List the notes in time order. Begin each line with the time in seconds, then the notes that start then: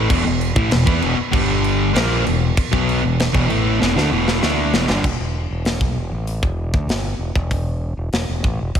0.08 E1 E2 B2, kick, crash
0.24 E1 E2 B2
0.41 crash
0.56 A1 A2 E3, kick
0.71 E1 E2 B2, snare, crash
0.86 E2 E3 B3, kick
1.01 E1 E2 B2, crash
1.17 muted overdriven electric guitar stroke, muted fingered electric bass stroke
1.31 G1 G2 D3 G3, kick, crash
1.64 crash
1.93 A#1 A#2 F3 A#3, snare, crash
2.24 E1 E2 B2, crash
2.57 kick, crash
2.71 B1 B2 F#3 B3, kick
2.89 crash
3.02 E1 E2 B2
3.20 snare, crash
3.33 E1 E2 B2, kick
3.48 A1 A2 E3 A3, crash
3.80 E1 E2 B2, snare
3.96 D2 D3 A3, snare
4.11 E1 E2 B2 E3
4.28 snare
4.42 D2 D3 A3 D4, snare
4.73 E1 E2 B2, snare
4.88 G1 G2 D3, snare
5.04 E1, kick, crash
5.19 E1
5.51 E1
5.65 snare, open hi-hat
5.80 B1, kick
5.96 E1
6.11 A1
6.27 open hi-hat
6.43 E1, kick
6.73 D2, kick
6.88 G1, snare, open hi-hat
7.19 E1
7.35 E1, kick
7.51 kick, open hi-hat
7.97 E1
8.13 E1, snare, open hi-hat
8.29 E1
8.43 A1, kick
8.61 E1
8.75 E1, kick, open hi-hat